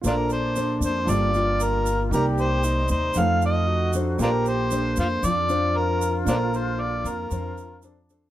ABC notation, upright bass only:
X:1
M:4/4
L:1/8
Q:1/4=116
K:Bb
V:1 name="Upright bass" clef=bass
B,,,3 F,, G,,,4 | C,,3 E,, F,,4 | B,,,3 F,, F,,4 | B,,,3 F,, F,,4 |]